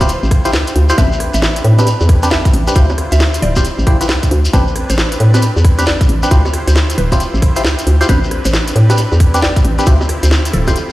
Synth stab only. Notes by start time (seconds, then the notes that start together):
0.01 E4 F4 G4 C5
0.45 E4 F4 G4 C5
0.90 E4 F4 G4 C5
0.98 C4 D4 G4 B4
1.79 C4 D4 G4 B4
2.23 C4 D4 G4 B4
2.67 C4 D4 G4 B4
2.76 E4 F4 G4 C5
3.56 E4 F4 G4 C5
3.87 E4 F4 G4 C5
4.01 E4 F4 G4 B4
4.53 C4 D4 G4 B4
5.34 C4 D4 G4 B4
5.79 C4 D4 G4 B4
6.23 C4 D4 G4 B4
6.31 E4 F4 G4 C5
7.12 E4 F4 G4 C5
7.56 E4 F4 G4 C5
8.01 E4 F4 G4 C5
8.09 C4 D4 G4 B4
8.90 C4 D4 G4 B4
9.34 C4 D4 G4 B4
9.79 C4 D4 G4 B4
9.87 E4 F4 G4 C5
10.67 E4 F4 G4 C5